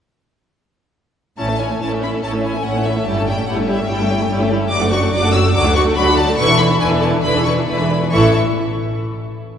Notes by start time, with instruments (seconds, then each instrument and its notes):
1.38 double bass section A1, cello section A2, viola section C#4 E4, violin section C#5 A5
1.48 viola section A3 C#4, violin section A4 E5
1.59 viola section C#4 E4, violin section C#5 G#5
1.69 viola section A3 C#4, violin section A4 E5
1.81 double bass section A1, cello section A2, viola section C#4 E4, violin section C#5 A5
1.91 viola section A3 C#4, violin section A4 E5
2.02 viola section C#4 E4, violin section C#5 B5
2.13 viola section A3 C#4, violin section A4 E5
2.23 double bass section A1, cello section A2, viola section C#4 E4, violin section C#5 A5
2.34 viola section A3 C#4, violin section A4 E5
2.45 viola section C#4 E4, violin section C#5 G#5
2.55 viola section A3 C#4, violin section A4 E5
2.64 double bass section A1, cello section A2, viola section C#4 E4, violin section C#5 F#5
2.76 viola section A3 C#4, violin section A4 E5
2.86 viola section C#4 E4, violin section C#5 E5
2.97 viola section A3 C#4, violin section A4 E5
3.06 double bass section G1, cello section G2, viola section G3 E4, violin section G4 C#5 A5
3.17 viola section A3 C#4, violin section A4 E5
3.28 viola section G3 E4, violin section G4 C#5 G5
3.38 viola section A3 C#4, violin section A4 E5
3.47 double bass section G1, cello section G2, viola section G3 E4, violin section G4 C#5 F#5
3.58 viola section A3 C#4, violin section A4 E5
3.68 viola section G3 E4, violin section G4 C#5 E5
3.78 viola section A3 C#4, violin section A4 E5
3.88 double bass section G1, cello section G2, viola section G3 E4, violin section G4 C#5 G5
3.99 viola section A3 C#4, violin section A4 E5
4.09 viola section G3 E4, violin section G4 C#5
4.20 viola section A3 C#4, violin section A4 E5
4.29 double bass section G1, cello section G2, viola section G3 E4, violin section G4 C#5
4.40 viola section A3 C#4, violin section A4 E5
4.51 viola section G3 E4, violin section G4 C#5
4.61 viola section A3 C#4, violin section A4 E5
4.70 double bass section F#1, cello section F#2, viola section F#3 F#4, violin section F#4 D5 D6
4.81 viola section A3 D4, violin section A4 F#5
4.91 viola section F#3 F#4, violin section F#4 D5 C#6
5.02 viola section A3 D4, violin section A4 F#5
5.12 double bass section F#1, cello section F#2, viola section F#3 F#4, violin section F#4 D5 D6
5.24 viola section A3 D4, violin section A4 F#5
5.33 viola section F#3 F#4, violin section F#4 D5 E6
5.44 viola section A3 D4, violin section A4 F#5
5.53 double bass section D2, cello section D2, viola section F#3 F#4, violin section F#4 D5 D6
5.65 viola section A3 D4, violin section A4 F#5
5.75 viola section F#3 F#4, violin section F#4 D5 C#6
5.87 viola section A3 D4, violin section A4 F#5
5.96 cello section D2, double bass section D2, viola section F#3 F#4, violin section F#4 D5 B5
6.07 viola section A3 D4, violin section A4 F#5
6.17 viola section F#3 F#4, violin section F#4 D5 A5
6.28 viola section A3 D4, violin section A4 F#5
6.37 double bass section E1, cello section E2, viola section D3 E4, violin section B4 D5 C#6
6.48 viola section E3 D4, violin section A4 E5
6.58 viola section D3 E4, violin section B4 D5 B5
6.69 viola section E3 D4, violin section A4 E5
6.80 double bass section E1, cello section E2, viola section D3 E4, violin section B4 D5 G#5
6.90 viola section E3 D4, violin section A4 E5
7.01 viola section D3 E4, violin section B4 D5 A5
7.12 viola section E3 D4, violin section A4 E5
7.23 double bass section E1, cello section E2, viola section D3 E4, violin section B4 D5 B5
7.35 viola section E3 D4, violin section G#4 E5
7.45 viola section D3 E4, violin section B4 D5 C#6
7.57 viola section E3 D4, violin section G#4 E5
7.67 double bass section E1, cello section E2, viola section D3 E4, violin section B4 D5 B5
7.78 viola section E3 D4, violin section G#4 E5
7.90 viola section D3 E4, violin section B4 D5
8.01 viola section E3 D4, violin section G#4 E5
8.12 double bass section A1, cello section A2, viola section E3 E4, violin section A4 E5 C#6